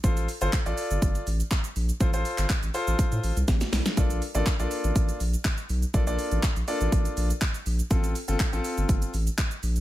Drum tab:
HH |xxoxxxoxxxoxxxox|xxoxxxoxxxoxxxox|xxoxxxoxxxoxxxox|xxoxxxoxxxoxxxox|
SH |xxxxxxxxxxxxxxxx|xxxxxxxxxxxxxxxx|xxxxxxxxxxxxxxxx|xxxxxxxxxxxxxxxx|
CP |----x-------x---|---xx-----------|----x-------x---|----x-------x---|
SD |----------------|------------oooo|----------------|----------------|
BD |o---o---o---o---|o---o---o---o---|o---o---o---o---|o---o---o---o---|

HH |xxoxxxoxxxoxxxox|
SH |xxxxxxxxxxxxxxxx|
CP |----x-------x---|
SD |----------------|
BD |o---o---o---o---|